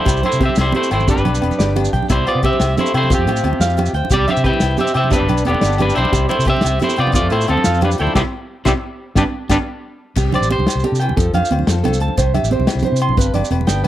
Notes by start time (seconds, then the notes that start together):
Already playing: G3 E4 C5
0.05 C2 C3 G4, kick, closed hi-hat, high conga, low conga, low agogo, maracas
0.17 maracas
0.23 E4 C5, closed hi-hat, low conga, low agogo
0.28 A3, maracas
0.33 C3
0.40 C4 G4 C5, kick, closed hi-hat, high conga
0.45 E5, low conga
0.56 C2 C3, snare, closed hi-hat, low agogo, maracas
0.60 G3 E4 C5
0.66 low conga
0.72 B2 E4 G4, closed hi-hat, high conga, low conga
0.76 A3 C5
0.83 low conga, maracas
0.91 G#1 A2 E4 C5 G5, snare, closed hi-hat, low agogo
0.95 A3
1.00 low conga, maracas
1.08 G1 D4 G4 B4, muted steel-string acoustic guitar stroke, kick, closed hi-hat, high conga, low conga, maracas
1.12 G3
1.16 G1, maracas
1.24 B1 B4, closed hi-hat, low conga, low agogo
1.34 low conga, maracas
1.41 E1 B3 G4, closed hi-hat, high conga, low agogo
1.51 low conga, maracas
1.59 G1 G4 D5, snare, closed hi-hat, maracas
1.76 G2 D4 G4, closed hi-hat, high conga, low conga, low agogo
1.85 maracas
1.93 B1 G4 G5, kick, closed hi-hat, low conga
2.03 low conga
2.09 C2 G3 E4 G4 C5, muted steel-string acoustic guitar stroke, kick, closed hi-hat, high conga, low agogo, maracas
2.27 F4 C5 D5, closed hi-hat, low agogo
2.31 C3 B3
2.43 C4 G4 C5 E5, kick, closed hi-hat, high conga
2.48 C4
2.53 low conga
2.60 C2 G4, snare, closed hi-hat, low agogo, maracas
2.77 G2 A3 E4 G4 C5, closed hi-hat, high conga, low conga, maracas
2.86 low conga, maracas
2.94 C3 A3 E4 G4 C5 G5, closed hi-hat, low agogo
3.04 low conga
3.10 F2 F3 C4 F4 G4, kick, closed hi-hat, high conga, maracas
3.15 F2 C3 G4
3.25 A2, muted clean electric guitar stroke, closed hi-hat, low conga, low agogo
3.36 maracas
3.43 D2 F4, closed hi-hat, high conga, low agogo
3.53 low conga
3.60 F2 F4 F5, snare, closed hi-hat, maracas
3.70 maracas
3.77 C3 F4 G4, closed hi-hat, high conga, low conga, low agogo
3.86 maracas
3.93 D2 C5 G5, closed hi-hat, low conga
4.05 low conga
4.10 C2 G4, muted steel-string acoustic guitar stroke, kick, closed hi-hat, high conga, low agogo, maracas
4.14 G3 G4 D5
4.28 G4 E5, closed hi-hat, low conga, low agogo
4.32 C4
4.37 C3, maracas
4.44 C4 G4 B4 G5, kick, closed hi-hat, high conga
4.49 E4
4.53 low conga
4.60 C2 C3, snare, closed hi-hat, low agogo, maracas
4.77 B2 G4 E5, closed hi-hat, high conga, low conga, maracas
4.83 C4
4.87 maracas
4.94 A2 C3 G4 E5 G5, closed hi-hat, low agogo
4.99 C4
5.04 low conga
5.10 G1 B3 D4 G4 B4, muted steel-string acoustic guitar stroke, kick, closed hi-hat, high conga, maracas
5.15 G3 D4 G4
5.21 G1
5.28 B1 B4, closed hi-hat, low conga, low agogo
5.38 maracas
5.45 E1 B3 G4, closed hi-hat, high conga, low agogo
5.49 D3 D4
5.54 low conga
5.61 G1 D4 D5, snare, closed hi-hat, maracas
5.72 maracas
5.78 G2 D4 G4 B4, closed hi-hat, high conga, low conga, low agogo
5.84 G3
5.90 maracas
5.95 B1 E4 G4 C5 G5, closed hi-hat, low conga
6.01 G3, low conga
6.12 C2 C3 G4, kick, closed hi-hat, high conga, low agogo, maracas
6.29 E4 C5, closed hi-hat, low conga, low agogo
6.34 A3
6.39 C3, maracas
6.45 C4 G4 C5, kick, closed hi-hat, high conga
6.50 C4 E5
6.57 low conga
6.61 C2, snare, closed hi-hat, low conga, low agogo
6.65 G4, maracas
6.79 E4 G4, muted steel-string acoustic guitar stroke, closed hi-hat, high conga, low conga, maracas
6.84 A3 C5
6.89 low conga, maracas
6.96 C3 F4 D5 G5, closed hi-hat, low agogo
7.01 B3 G4
7.07 low conga
7.12 F2 F3 F4 C5 D5, muted clean electric guitar stroke, kick, closed hi-hat, high conga, maracas
7.19 F2 A3
7.30 A2 E4 A4 C5, closed hi-hat, low agogo
7.35 A3
7.41 maracas
7.47 D2 C4 F4 A4, closed hi-hat, high conga, low agogo
7.51 F3
7.58 low conga
7.64 F2 F4 F5, snare, closed hi-hat, maracas
7.74 maracas
7.81 C3 G3 D4 G4 A4 B4, closed hi-hat, high conga, low conga, low agogo
7.91 maracas
7.98 D2 G3 E4 A4 C5 G5, closed hi-hat, low conga
8.07 low conga
8.15 C2 G3 C4 E4 G4 C5, kick, snare, high conga, low agogo, maracas
8.65 C2 G3 C4 E4 G4 C5, kick, snare, high conga, low agogo, maracas
9.15 G1 G3 B3 D4 G4 B4, kick, snare, high conga, low agogo, maracas
9.49 G1 G3 B3 D4 G4 B4, kick, snare, high conga, low agogo, maracas
10.15 C2 C3 G4, kick, crash, high conga, low agogo, maracas
10.26 low conga
10.32 G4 C5 D5, closed hi-hat, low conga, low agogo
10.41 A1, maracas
10.50 G4 C5, closed hi-hat, high conga
10.58 C2, low conga
10.67 C3, snare, closed hi-hat, low agogo, maracas
10.75 C2
10.80 maracas
10.84 D3 G4, closed hi-hat, high conga
10.91 C3, low conga, maracas
11.00 E3 G5, closed hi-hat, low agogo
11.09 E2, low conga
11.17 F2 F3 A4, kick, closed hi-hat, high conga, maracas
11.33 F2 C5 F5, closed hi-hat, low conga, low agogo
11.43 low conga, maracas
11.50 D2 C5, closed hi-hat, high conga, low agogo
11.59 low conga
11.67 F2 F4 A4, muted clean electric guitar stroke, snare, closed hi-hat, maracas
11.76 low conga
11.84 C2 A4 C5, closed hi-hat, high conga, low conga, low agogo
11.93 maracas
12.00 C#2 A5, closed hi-hat
12.08 low conga
12.17 C2 C3 C5, kick, closed hi-hat, high conga, low agogo, maracas
12.26 low conga
12.34 G4 E5, closed hi-hat, low conga, low agogo
12.43 A1, maracas
12.51 C5, closed hi-hat, high conga
12.59 C2, low conga
12.67 C4 E4, snare, closed hi-hat, low conga, low agogo, maracas
12.75 C2, maracas
12.83 G4 C5, closed hi-hat, high conga, low conga
12.92 C3, low conga
12.96 closed hi-hat, maracas
13.02 C6, low agogo
13.09 C2, low conga
13.17 G1 G2 B4, kick, closed hi-hat, high conga, maracas
13.33 G1 G4 D5, closed hi-hat, low conga, low agogo
13.43 low conga, maracas
13.51 E1 B4, closed hi-hat, high conga, low agogo
13.61 low conga
13.67 G1 B3 D4 G5, snare, closed hi-hat, maracas
13.77 low conga
13.84 D2 B4, closed hi-hat, low agogo